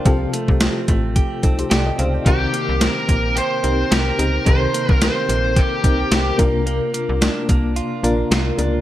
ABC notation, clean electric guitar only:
X:1
M:4/4
L:1/8
Q:"Swing 16ths" 1/4=109
K:Cdor
V:1 name="Clean electric guitar"
F, A, C A, G C G C | E, B, C B, G C G C | E, B, C B, G C G B, | B, B, D B, F D F D |]